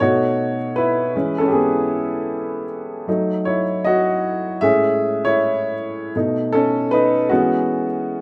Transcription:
0.00 B2 A3 D#4 F#4 C#5
0.76 E4 B4
1.15 E3 G#3 C#4
1.38 C#4 A4
1.48 G4 G#4
1.54 B3
3.08 F#3 A3 D#4
3.45 E4 C#5
3.85 F#4 D#5
4.61 A2 G#3 C#4 G#4 E5
5.25 E4 C#5
6.16 B2 A3 D#4
6.53 C#4 A4
6.91 D#4 B4
7.29 E3 G#3 B3 C#4 F#4

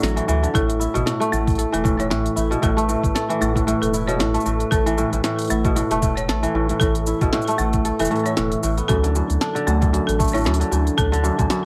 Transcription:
Already playing: A2 A3 D4 A4 E5 F#5
0.02 A1 F#3, snare, open hi-hat, shaker
0.08 shaker
0.16 E3, open hi-hat
0.28 D2 E3, shaker
0.43 D3, open hi-hat, shaker
0.54 A1 A2 A3 A4, kick, open hi-hat, shaker
0.70 open hi-hat, shaker
0.74 A4
0.80 E4, shaker
0.94 A1 B2, open hi-hat, shaker
1.06 A2, snare, open hi-hat, shaker
1.20 A3, open hi-hat
1.32 A1 A2 A3 E5, shaker
1.38 B4
1.47 kick, open hi-hat, shaker
1.50 open hi-hat
1.55 A4, open hi-hat
1.59 open hi-hat, shaker
1.72 E1 E3 A4, open hi-hat, shaker
1.84 A2, kick, shaker
1.99 A2 C#5, open hi-hat, shaker
2.10 A1 A2, snare, open hi-hat, shaker
2.26 open hi-hat, shaker
2.36 A1 E4, shaker
2.51 B2, open hi-hat, shaker
2.62 A1 A2 A4, kick, open hi-hat, shaker
2.77 A3, open hi-hat, shaker
2.89 A2, shaker
3.04 A1, kick, open hi-hat, shaker
3.15 A4, snare, open hi-hat, shaker
3.29 E3, open hi-hat
3.41 A1 A2 A3, shaker
3.55 A2, kick, open hi-hat, shaker
3.67 A2, open hi-hat, shaker
3.81 E1 A4, open hi-hat, shaker
3.94 E4, shaker
4.08 B2 C#5, open hi-hat, shaker
4.19 A1 A2, snare, open hi-hat, shaker
4.34 A3, open hi-hat
4.40 shaker
4.46 A1 A2, shaker
4.60 open hi-hat, shaker
4.71 A1 A4, kick, open hi-hat, shaker
4.86 E3, open hi-hat, shaker
4.98 A2, shaker
5.12 A1 A2, open hi-hat, shaker
5.24 A2, snare, open hi-hat, shaker
5.39 open hi-hat
5.42 open hi-hat
5.45 open hi-hat
5.50 A1 A3 E4, shaker
5.65 B2, kick, open hi-hat, shaker
5.76 A2, open hi-hat, shaker
5.90 E1 A3 A4, open hi-hat, shaker
6.02 A2, kick, shaker
6.17 C#5, open hi-hat, shaker
6.28 A1 A4, snare, open hi-hat, shaker
6.43 E3, open hi-hat, shaker
6.54 A1 A2
6.69 A2, open hi-hat, shaker
6.80 A1 A2 A4, kick, open hi-hat, shaker
6.95 open hi-hat, shaker
7.07 E4, shaker
7.21 A1 B2, kick, open hi-hat, shaker
7.33 A2, snare, open hi-hat, shaker
7.42 shaker
7.48 A3, open hi-hat, shaker
7.58 A1 A2 A3, shaker
7.73 kick, open hi-hat, shaker
7.85 A4, open hi-hat, shaker
7.99 E1 E3 A4, open hi-hat, shaker
8.02 open hi-hat, shaker
8.07 A2, open hi-hat
8.11 open hi-hat
8.15 open hi-hat
8.19 open hi-hat
8.25 E4 C#5, open hi-hat, shaker
8.37 E1 A2, snare, open hi-hat, shaker
8.52 open hi-hat
8.63 A1 A2, shaker
8.78 B3, open hi-hat, shaker
8.88 D2 F#2 D4 A4, kick, open hi-hat, shaker
9.03 D3, open hi-hat, shaker
9.15 F#2 E5, shaker
9.30 D2, open hi-hat, shaker
9.41 D4, snare, open hi-hat, shaker
9.55 D3, open hi-hat
9.67 D2 F#2 A3, shaker
9.81 F#2, kick, open hi-hat, shaker
9.93 F#2, open hi-hat, shaker
10.07 A1 A4, open hi-hat, shaker
10.19 A3, kick, shaker
10.24 shaker
10.28 shaker
10.31 A2 C#5, open hi-hat, shaker
10.35 shaker
10.37 shaker
10.41 shaker
10.44 D2 F#2, snare, shaker
10.47 shaker
10.54 open hi-hat
10.60 D3, open hi-hat, shaker
10.71 D2 F#2, shaker
10.78 F#5
10.87 open hi-hat, shaker
10.97 D2 D4 A4, kick, open hi-hat, shaker
11.12 D3, open hi-hat, shaker
11.24 F#2, shaker
11.38 D2 F#2, kick, open hi-hat, shaker
11.50 F#2, snare, open hi-hat, shaker

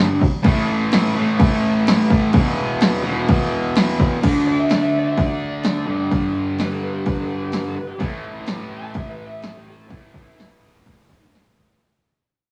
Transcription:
Already playing: G2 D3 G3
0.21 kick
0.43 A2 E3, kick, crash
0.47 A3
0.92 snare, crash
1.14 E3 A3
1.19 A2
1.40 kick, crash
1.87 snare, crash
2.10 kick
2.32 E2 B2, kick, crash
2.37 E3
2.81 snare, crash
3.04 B2 E3
3.09 E2
3.29 kick, crash
3.76 snare, crash
4.00 kick
4.22 D3 A3, kick, open hi-hat, crash
4.26 D4
4.47 D5
4.59 E5
4.70 D5, snare, open hi-hat
4.82 E5
4.99 D5
5.08 E5
5.17 kick, open hi-hat
5.22 D5
5.64 snare, open hi-hat
5.86 G2 D3
5.90 G3
6.12 kick, open hi-hat
6.59 B4, snare, open hi-hat
6.72 A4
6.84 B4
6.93 G4
7.06 B4, kick, open hi-hat
7.21 A4
7.30 B4
7.43 G4
7.52 B4, snare, open hi-hat
7.68 A4
7.77 B4
7.87 G4
7.98 A2 E3 E4, kick, open hi-hat
8.04 A3
8.46 snare, open hi-hat
8.78 A5
8.90 E5, open hi-hat
8.95 kick
9.09 B4
9.26 E5
9.42 A4, snare, open hi-hat
9.56 G4
9.70 A4
9.86 A2 E4
9.90 E3 A3, kick, open hi-hat
10.14 kick
10.21 E4
10.37 E4, snare, open hi-hat
10.86 kick, open hi-hat
11.10 kick
11.34 snare, open hi-hat
11.57 kick

